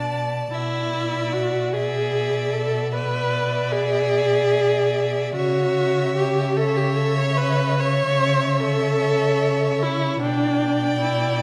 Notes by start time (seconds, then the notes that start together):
Already playing: B2 D4 D5 A5
0.52 B2 E4 D5 E5
1.32 F#4
1.73 G#4 D5 E5
2.53 A4
2.92 B4 D5 E5
3.72 G#4
5.35 C#3 F#4 C#5 E5
6.17 G4
6.57 A4 C#5 E5
6.77 G4
6.97 A4
7.19 C#5
7.37 B4
7.79 C#5 E5
8.60 A4
9.82 E4
10.21 B2 D4 D5 G5
11.01 E4